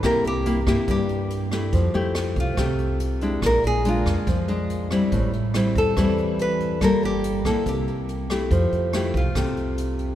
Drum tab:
HH |xxxxxxxx|xxxxxxxx|xxxxxxxx|xxxxxxxx|
SD |r--r---r|--r-r---|r--r---r|--r-r---|
BD |o--oo---|o--oo---|o--oo---|o--oo---|

HH |xxxxxxxx|xxxxxxxx|
SD |r--r---r|--r-r---|
BD |o--oo---|o--oo---|